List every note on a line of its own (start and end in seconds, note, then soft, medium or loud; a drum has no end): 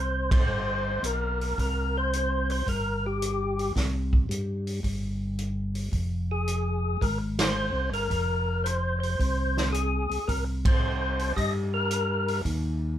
0.00 0.45 C2 medium
0.00 0.30 C5 medium
0.31 1.06 C5 medium
0.31 kick medium
0.31 ride medium
0.48 0.99 G1 medium
1.03 1.54 B1 medium
1.03 1.59 A#4 medium
1.03 closed hi-hat soft
1.41 open hi-hat soft
1.58 2.63 C2 medium
1.58 1.97 A#4 medium
1.58 kick soft
1.58 open hi-hat soft
1.97 2.50 C5 medium
2.13 closed hi-hat soft
2.50 2.68 C5 medium
2.50 open hi-hat soft
2.66 3.71 G1 medium
2.66 3.06 A#4 medium
2.66 kick soft
2.66 open hi-hat soft
3.06 3.73 G4 medium
3.22 closed hi-hat soft
3.59 open hi-hat soft
3.76 4.26 C2 medium
3.76 kick soft
3.76 snare soft
3.76 open hi-hat soft
4.13 kick soft
4.29 4.80 G2 medium
4.29 closed hi-hat soft
4.67 open hi-hat soft
4.83 5.89 G1 medium
4.83 kick soft
4.83 open hi-hat soft
5.39 closed hi-hat soft
5.75 open hi-hat soft
5.92 6.97 F1 medium
5.92 kick soft
5.92 open hi-hat soft
6.31 7.05 G#4 medium
6.48 closed hi-hat soft
7.01 7.70 G#1 medium
7.01 7.18 A#4 medium
7.01 kick soft
7.01 open hi-hat soft
7.39 7.90 C5 medium
7.39 snare medium
7.39 ride medium
7.73 7.90 C2 medium
7.90 8.08 G1 medium
7.90 8.67 A#4 medium
7.90 open hi-hat soft
8.10 9.15 F1 medium
8.10 kick soft
8.10 open hi-hat soft
8.64 8.99 C5 medium
8.64 closed hi-hat soft
9.00 9.69 C5 medium
9.00 open hi-hat soft
9.19 10.07 C2 medium
9.19 kick soft
9.19 open hi-hat soft
9.57 snare soft
9.72 10.29 G#4 medium
9.72 closed hi-hat soft
10.10 10.19 C2 soft
10.10 open hi-hat soft
10.28 11.33 C2 medium
10.28 10.44 A#4 medium
10.28 kick soft
10.28 open hi-hat soft
10.65 11.33 C5 medium
10.65 kick medium
10.65 ride medium
11.19 open hi-hat soft
11.36 12.41 G2 medium
11.36 11.53 D#5 loud
11.36 kick soft
11.36 open hi-hat soft
11.74 12.41 A#4 medium
11.91 closed hi-hat soft
12.28 open hi-hat soft
12.45 12.99 D#2 medium
12.45 kick soft
12.45 open hi-hat soft